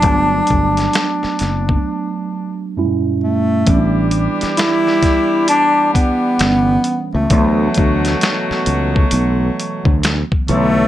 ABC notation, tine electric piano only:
X:1
M:4/4
L:1/8
Q:"Swing 16ths" 1/4=66
K:Amix
V:1 name="Tine electric piano"
[F,A,B,D]6 [F,,^A,,G,=A,CE]2 | [E,G,B,CD]6 [E,G,B,C]2 | [E,F,A,B,]6- [E,F,A,B,] [C,D,E,A,c] |]